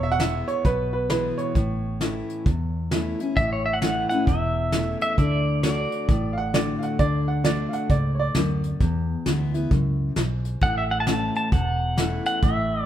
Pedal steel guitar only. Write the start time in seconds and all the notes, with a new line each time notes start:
3.37 E5
3.53 C#5
3.66 E5
3.73 F#5
3.82 F#5
4.09 F#5
4.28 E5
5.02 E5
5.19 D5
5.63 D5
10.63 F#5
10.78 E5
10.91 F#5
11.00 A5
11.08 A5
11.37 A5
11.53 F#5
12.26 F#5
12.43 E5